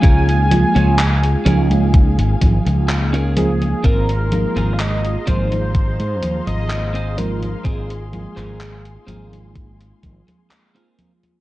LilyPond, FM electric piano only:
\new Staff \with { instrumentName = "FM electric piano" } { \time 4/4 \key aes \major \tempo 4 = 63 <aes bes des' ees' f'>8 <aes bes des' ees' f'>4 <aes bes des' ees' f'>16 <aes bes des' ees' f'>4.~ <aes bes des' ees' f'>16 <aes bes ees' f' c''>8~ | <aes bes ees' f' c''>8 <aes bes c' ees' f'>4 <aes bes c' ees' f'>16 <aes bes c' ees' f'>4.~ <aes bes c' ees' f'>16 <aes bes c' ees' f'>8~ | <aes bes c' ees' f'>8 <aes bes c' ees' f'>4 <aes bes c' ees' f'>16 <aes bes c' ees' f'>4. <aes bes c' ees' f'>8. | }